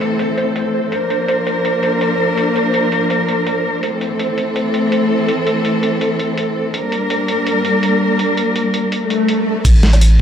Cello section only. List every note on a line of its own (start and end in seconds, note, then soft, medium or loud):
0.00 0.89 E3 medium
0.00 0.89 A3 medium
0.00 0.89 C4 medium
0.00 0.89 A4 medium
0.92 3.80 F3 medium
0.92 3.80 A#3 medium
0.92 3.80 D4 medium
0.92 3.80 A#4 medium
3.83 6.71 E3 medium
3.83 6.71 A3 medium
3.83 6.71 C4 medium
3.83 6.71 A4 medium
6.74 9.62 G3 medium
6.74 9.62 A#3 medium
6.74 9.62 D4 medium
6.74 9.62 A#4 medium